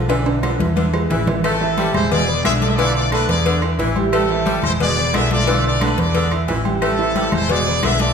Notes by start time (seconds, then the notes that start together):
Already playing: B1
0.09 D3 E3 D4 D5, cowbell, high conga, high timbale, low agogo
0.26 high conga, high timbale, low agogo
0.43 D3 F3 F4 A4, cowbell, high conga, low timbale, low agogo, claves
0.59 E2 E3 E4 E5, cowbell, high conga
0.76 D3, cowbell, high conga, low agogo
0.93 G#3 G#4 B4, low timbale, low agogo, claves
1.10 A1 E3, cowbell, low conga, low timbale
1.27 E3 E4 E5, low conga, low timbale, low agogo
1.44 A3 C4 A4, cowbell, low agogo, claves
1.61 E3 E4 E5, high conga
1.78 G3, cowbell, high conga, low timbale, low agogo
1.94 E1 G#3 E4 G#4 C5 G#5, high conga, low conga, low agogo, claves
2.11 B2 G#4 D5, cowbell, high conga, low conga
2.28 B3 B4 B5, high conga
2.44 B1 D3 G#4 E5, cowbell, high conga, low timbale, low agogo, claves
2.61 A3 F4 A4 D5 A5, cowbell, high conga
2.69 E5
2.75 D3 E3 D4 F4 D5 F5, cowbell, low agogo
2.95 F4 D5, high conga, low agogo
3.12 D3 A3 D4 A4 B4 A5, cowbell, high conga, low timbale, low agogo, claves
3.28 E2 B3 G#4 B4 D5 B5, cowbell
3.46 D3, cowbell, high conga, low agogo
3.62 E4 E5 E6, high conga, low agogo, claves
3.78 A1 E3, cowbell, high conga, low timbale
3.96 G3 G4 G5, high conga, low agogo
4.13 A3 C4 A4, cowbell, high conga, low agogo, claves
4.30 E3 E4 E5
4.46 G3, cowbell, high conga, low timbale, low agogo
4.63 E1 G#3 E4 G#4 C5 G#5, high conga, low conga, low agogo, claves
4.80 B2 G#4 D5, cowbell, high conga, low conga
4.97 B3 B4 B5
5.13 B1 D3 G#4 E5, cowbell, high conga, low timbale, low agogo, claves
5.31 A3 F4 A4 D5 A5, cowbell, high conga
5.47 D3 E3 D4 F5, cowbell, high conga, low agogo
5.64 F4 D5, high conga, low agogo
5.81 D3 A3 D4 A4 B4 A5, cowbell, high conga, low timbale, low agogo, claves
5.97 E2 B3 G#4 B4 D5 B5, cowbell
6.15 D3, cowbell, high conga, low agogo
6.31 E4 E5 E6, high conga, low agogo, claves
6.48 A1 E3, cowbell, high conga, low timbale
6.65 G3 G4 G5, high conga, low agogo
6.82 A3 C4 A4, cowbell, low agogo, claves
6.99 E3 E4 E5
7.15 G3, cowbell, high conga, low timbale, low agogo
7.32 E1 G#3 E4 G#4 C5 G#5, high conga, low conga, low agogo, claves
7.49 B2 G#4 D5, cowbell, high conga, low conga
7.66 B3 B4 B5, high conga
7.82 B1 D3 G#4 E5, cowbell, high conga, low timbale, low agogo, claves
8.00 A3 F4 A4 D5 A5, cowbell, high conga